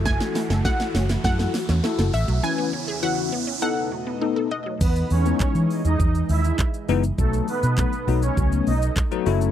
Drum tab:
CC |----------------|----------------|x---------------|----------------|
HH |-xox-xox-xox-xox|----------------|-xox-xox-xox-xox|-xox-xox-xox-xox|
SH |----------------|----------------|xxxxxxxxxxxxxxxx|xxxxxxxxxxxxxxxx|
CP |----------------|----------------|----x-------x---|----x-------x---|
SD |oooooooooooooo--|----------------|----------------|----------------|
BD |o---o---o-------|----------------|o---o---o---o---|o---o---o---o---|